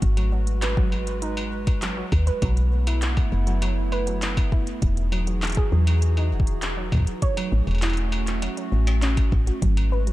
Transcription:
Already playing: F#4
0.02 G#1 G#3 B4, kick, closed hi-hat
0.17 F#3, closed hi-hat, struck metal
0.32 F#3
0.47 closed hi-hat
0.62 B4, clap, closed hi-hat, struck metal
0.77 F#3, kick
0.92 struck metal
1.07 closed hi-hat
1.22 D#4, closed hi-hat
1.37 struck metal
1.67 kick, closed hi-hat, struck metal
1.82 F#3, clap, closed hi-hat
1.97 F#3
2.12 D#2, kick, struck metal
2.27 B4, closed hi-hat
2.42 B1 F#3 A3 B3 E4, kick, closed hi-hat, struck metal
2.57 closed hi-hat
2.87 E4, closed hi-hat, struck metal
3.02 clap, closed hi-hat
3.17 kick, struck metal
3.32 F#1
3.47 F#3, closed hi-hat
3.62 F#3, closed hi-hat, struck metal
3.92 B4, struck metal
4.07 F#3, closed hi-hat
4.22 clap, closed hi-hat
4.37 kick, struck metal
4.52 E4, kick
4.67 closed hi-hat
4.82 E1 E3 D#4 F#4 G#4, kick, closed hi-hat
4.97 closed hi-hat
5.12 F#3, struck metal
5.27 F#3, closed hi-hat
5.42 clap, closed hi-hat, struck metal
5.45 closed hi-hat
5.47 closed hi-hat
5.50 closed hi-hat
5.52 closed hi-hat
5.55 G#4, kick, closed hi-hat
5.72 E2 F#3
5.87 closed hi-hat, struck metal
6.02 closed hi-hat
6.17 D#4, struck metal
6.32 E1
6.40 kick
6.47 closed hi-hat
6.62 clap, closed hi-hat
6.77 F#3
6.92 F#3, kick, struck metal
6.95 kick
6.97 kick
7.00 kick
7.02 kick
7.05 kick, closed hi-hat
7.22 A3 C#4 F#4 C#5, kick, closed hi-hat
7.37 F#3, closed hi-hat, struck metal
7.52 A1
7.67 E1, struck metal
7.71 struck metal
7.75 struck metal
7.78 clap, closed hi-hat, struck metal
7.82 E4, struck metal
7.86 struck metal
7.90 struck metal
7.93 closed hi-hat, struck metal
8.12 struck metal
8.27 clap, closed hi-hat
8.42 F#3, closed hi-hat, struck metal
8.57 F#3, closed hi-hat
8.72 A1
8.87 C#4, closed hi-hat, struck metal
9.02 C#4, clap, closed hi-hat
9.17 kick, closed hi-hat, struck metal
9.32 A1, kick
9.47 F#4, closed hi-hat
9.62 G#1 F#3 G#3 F#4 B4, kick, closed hi-hat
9.77 closed hi-hat, struck metal
9.92 B4
10.07 F#3, closed hi-hat

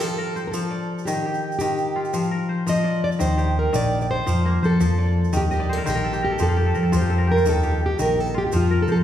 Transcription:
Already playing: D#4 F4 G4
0.00 F3 A4, shaker
0.18 A#4
0.36 C5, shaker
0.47 A#4
0.52 F3 A4, shaker
0.70 D5
0.99 shaker
1.05 D#3 G4, shaker
1.26 G4
1.34 shaker
1.52 shaker
1.59 D#3 G4, shaker
1.78 shaker
1.96 F4
2.05 shaker
2.13 F3, shaker
2.23 shaker
2.31 A#4
2.49 C5
2.67 F3 D#5, shaker
2.76 shaker
2.84 D5
3.04 D5
3.12 shaker
3.19 D#2 D#3 C5, shaker
3.37 G4, shaker
3.59 A#4
3.73 A#1 D#3 D5, shaker
4.01 D5, shaker
4.11 C5
4.26 F2 F3, shaker
4.46 A#3
4.62 F3 A4 C5, shaker
4.79 F2 F3, shaker
4.98 D5
5.24 shaker
5.33 D#2 D#3, shaker
5.37 G4
5.51 G4 D#5, shaker
5.60 D5
5.69 A4 C5
5.77 A#4
5.85 A#1 D#3 C5, shaker
5.89 G4
5.95 A#4
6.04 A4
6.13 G4, shaker
6.22 G4 A#4
6.31 A4
6.39 F2 F3 G4 A4, shaker
6.48 F4
6.57 G4
6.66 A4
6.74 F3 A#4, shaker
6.83 A4
6.92 F2 F3 F4, shaker
6.97 C5
7.01 G4
7.10 A4
7.18 A#4
7.27 G4
7.32 A#4
7.36 F4, shaker
7.46 D#2 D#3 A4, shaker
7.63 G4, shaker
7.86 G4
7.99 A#1 D#3 A#4, shaker
8.20 A4
8.26 shaker
8.34 F4 G4
8.47 G4
8.52 F2 F3, shaker
8.56 F4
8.71 A#4
8.82 A4
8.88 F3 C5, shaker
8.92 A4

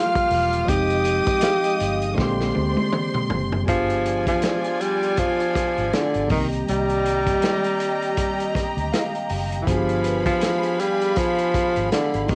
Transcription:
Already playing: F3 G3 A#3 F4 G4 A#4 D5 F5 G5 D6 F6
0.15 kick, closed hi-hat
0.30 E1, open hi-hat
0.53 closed hi-hat
0.65 F1 F3 G#3 C4 D#5 D#6, kick, closed hi-hat
0.69 D#4 G4 F5 D#6
0.90 closed hi-hat
1.05 closed hi-hat
1.27 muted fingered electric bass stroke, kick, closed hi-hat
1.41 F5, snare, closed hi-hat
1.64 closed hi-hat
1.80 G1, closed hi-hat
2.02 closed hi-hat
2.14 A#1 D3 G#3 A#3 D5 C6, kick
2.19 C4 G4 C5 C6, snare
2.40 snare
2.55 D2, high tom
2.77 high tom
2.93 mid tom
3.14 mid tom
3.30 F#1, floor tom
3.52 floor tom
3.66 G1 F3 B3 F4 G#4 D5 G#5, kick, closed hi-hat
3.70 D4 G4
3.90 closed hi-hat
4.06 closed hi-hat
4.27 F3, kick, closed hi-hat
4.42 D5, snare, closed hi-hat
4.64 closed hi-hat
4.81 G3, closed hi-hat
5.03 closed hi-hat
5.17 F3, kick, closed hi-hat
5.40 closed hi-hat
5.55 muted fingered electric bass stroke, kick, snare, closed hi-hat
5.78 G#1, closed hi-hat
5.93 D3, snare, closed hi-hat
6.14 G#1, closed hi-hat
6.27 C2 D#3 G3 A#3 G4 D#5 A#5, kick, open hi-hat
6.31 D#3 C4 G4
6.53 closed hi-hat
6.68 C2 G3, closed hi-hat
6.90 closed hi-hat
7.06 closed hi-hat
7.27 kick, closed hi-hat
7.42 snare, closed hi-hat
7.64 closed hi-hat
7.80 closed hi-hat
8.02 closed hi-hat
8.17 kick, closed hi-hat
8.40 closed hi-hat
8.55 muted fingered electric bass stroke, kick, snare, closed hi-hat
8.77 D2, closed hi-hat
8.92 F5, snare, closed hi-hat
9.15 closed hi-hat
9.29 F#1 G5, open hi-hat
9.52 closed hi-hat
9.62 E3 F3 F5 B5
9.66 G1 F3 B3 D4 G#4, kick, closed hi-hat
9.71 F#4
9.78 G4
9.89 closed hi-hat
10.04 B4, closed hi-hat
10.26 F3, kick, closed hi-hat
10.41 snare, closed hi-hat
10.63 closed hi-hat
10.80 G3, closed hi-hat
11.02 closed hi-hat
11.16 F3, kick, closed hi-hat
11.39 closed hi-hat
11.54 muted fingered electric bass stroke, kick, closed hi-hat
11.76 G#1, closed hi-hat
11.92 D3, snare, closed hi-hat
12.14 G#1, closed hi-hat
12.26 C2 D#3 G3 A#3 D#4 G4 D#5 C6, kick, open hi-hat
12.31 C4

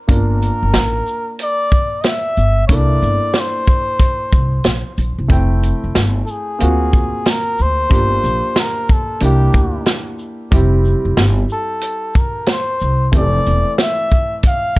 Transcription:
0.07 G1 A#3 D4 F4 A#4, kick, closed hi-hat
0.12 A#4
0.42 closed hi-hat, shaker
0.62 G1
0.74 A1, snare, closed hi-hat
1.07 shaker
1.39 closed hi-hat
1.43 D5
1.71 kick, shaker
2.01 D#5, snare, closed hi-hat
2.07 E5
2.37 G1, shaker
2.67 C2 A#3 D4 E4 C#5, kick, closed hi-hat
2.72 A4 D5
3.02 G1, shaker
3.34 snare, closed hi-hat
3.40 C5
3.66 kick, shaker
3.99 kick, closed hi-hat
4.32 C2, kick, shaker
4.64 A#1, snare, closed hi-hat
4.98 A#1, closed hi-hat, shaker
5.19 C2
5.28 F1 A3 C4 E4 G5, kick, closed hi-hat
5.63 closed hi-hat, shaker
5.84 F1
5.95 G1, snare, closed hi-hat
6.25 A4, shaker
6.30 G#4
6.59 D2 A#3 C4 F4 F#4, closed hi-hat
6.93 kick, shaker
7.25 snare, closed hi-hat
7.30 A#4
7.58 D2 C5, shaker
7.89 G1 A#3 D4 F4 G4, kick, closed hi-hat
8.24 A#1, shaker
8.56 A#4, snare, closed hi-hat
8.88 A4, kick, shaker
9.20 C2 A#3 D4 E4 G4, closed hi-hat
9.25 G4
9.53 D2, kick, shaker
9.86 snare, closed hi-hat
10.19 shaker
10.51 F1 G3 C4 E4 G4, kick, closed hi-hat
10.85 shaker
11.05 F1
11.17 G1, snare, closed hi-hat
11.49 A4, shaker
11.81 closed hi-hat
12.14 kick, shaker
12.19 A#4
12.46 snare, closed hi-hat
12.52 C5
12.80 C2, shaker
13.12 F1 E3 A3 C4 G4, kick, closed hi-hat
13.17 A4 D5
13.46 E1, closed hi-hat, shaker
13.78 E5, snare, closed hi-hat
14.11 kick, shaker
14.43 kick, closed hi-hat
14.47 F5
14.76 shaker

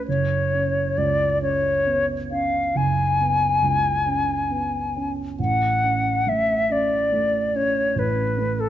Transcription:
0.08 F#1 C#5
0.53 C#4
0.97 C#2 D5
1.41 C#4 C#5
1.86 B3
2.31 C#4 F5
2.75 F#1 G#5
3.20 B3
3.62 C#2
4.06 C#4
4.50 B3
4.96 C#4
5.39 A1 F#5
5.84 C#4
6.27 A2 E5
6.70 C#4 D5
7.12 A3
7.55 C#4 C#5
7.96 A1 B4
8.37 A3
8.60 A4

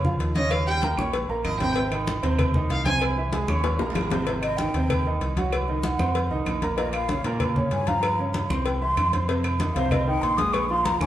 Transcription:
Already playing: F2
0.05 F3 F4 F5, high conga, low conga
0.19 D#2, cowbell, high conga, low agogo
0.35 C#3 C#4 C#5 D#5, cowbell, high conga
0.50 F5, cowbell, high conga, low agogo, claves
0.67 G3 G4 G5, high conga
0.81 A#3 A#4 A#5, cowbell, high conga, low agogo
0.97 A#1 C#4 C#5 C#6, high conga, low agogo, claves
1.13 cowbell, high conga
1.29 A#1 A#3 A#4 A#5, high conga, low agogo
1.45 G#1 D#5, cowbell, high conga, low timbale, low agogo, claves
1.60 C3 C4 C5 G5, cowbell, high conga
1.76 C3 C4 C5, cowbell, high conga
1.91 D#3 D#4 D#5, cowbell, high conga, low agogo, claves
2.07 cowbell, high conga, low agogo
2.22 D#2 C3 C4 C5, cowbell
2.38 cowbell, high conga, low conga, low agogo, claves
2.54 D#3 D#4 D#5, high conga, low conga
2.70 C2 F5, cowbell, high conga, low timbale, low agogo
2.85 C3 C4 C5 G#5, cowbell, high conga
3.01 cowbell, high conga, low agogo, claves
3.17 E3 E4 E5, high conga
3.33 G#3 G#4 G#5, cowbell, high conga, low agogo
3.48 D#2 C#4 C#5 C#6, high conga, high timbale, low agogo, claves
3.59 high timbale
3.64 cowbell, high bongo, high conga
3.70 high timbale
3.79 A#1 A#3 A#4 A#5, high bongo, high conga, high timbale, low agogo
3.90 low timbale
3.95 G#1, cowbell, low bongo, high conga, low agogo, claves
4.01 low timbale
4.10 C3 C4 C5, cowbell, low bongo, high conga, low timbale
4.22 low timbale
4.27 C3 C4 C5, cowbell, high conga
4.42 D#5, cowbell, high conga, low agogo, claves
4.57 D#3 D#4 D#5 G5, cowbell, high conga, low agogo
4.74 D#2 C3 C4 C5, cowbell
4.90 cowbell, high conga, low conga, low agogo, claves
5.06 D#3 D#4 D#5, high conga
5.21 C2, cowbell, high conga, low agogo
5.37 F#3 F#4 F#5, cowbell, high conga
5.52 cowbell, high conga, low agogo, claves
5.68 D#3 D#4 D#5, high conga
5.83 F#5, cowbell, high conga, low agogo
5.99 F2 C4 C5 C6, high conga, low agogo, claves
6.15 cowbell, high conga
6.31 C2 D#3 D#4 D#5, high conga, low agogo
6.46 A#1, cowbell, high conga, low timbale, low agogo, claves
6.62 A#3 A#4 A#5, cowbell, high conga
6.77 A#2 A#3 A#4 D#5, cowbell, high conga
6.93 F5, cowbell, high conga, low agogo, claves
7.08 C#3 C#4 C#5, cowbell, high conga, low agogo
7.24 A#2 A#3 A#4, cowbell
7.40 cowbell, high conga, low conga, low agogo, claves
7.56 C#3 C#4 C#5, high conga, low conga
7.71 G2 G#5, cowbell, high conga, low timbale, low agogo
7.87 F3 F4 F5 A#5, cowbell, high conga
8.03 cowbell, high conga, low agogo, claves
8.19 C#3 C#4 C#5, high conga
8.34 cowbell, high conga, low agogo
8.50 C2 C4 C5 C6, high conga, low agogo, claves
8.65 G5, cowbell, high conga
8.80 E3 E4 E5 C6, high conga, low agogo
8.97 F2, cowbell, high conga, low timbale, low agogo, claves
9.13 C4 C5 C6, cowbell, high conga
9.28 C3 C4 C5, cowbell, high conga
9.44 cowbell, high conga, low agogo, claves
9.59 D#3 D#4 D#5, cowbell, high conga, low agogo
9.74 C2 C3 C4 C5 F5, cowbell
9.91 D#5, cowbell, high conga, low conga, low agogo, claves
10.07 D#3 D#4 D#5 G5, high conga
10.22 A#1 C6, cowbell, high conga, low agogo
10.37 G#3 G#4 G#5 D#6, cowbell, high conga
10.53 C#6, cowbell, high conga, low agogo, claves
10.70 F3 F4 F5 C6, high conga
10.85 A#5, cowbell, high conga, low agogo
11.00 D#2 C#4 C#5 G#5 C#6, high conga, low agogo, claves

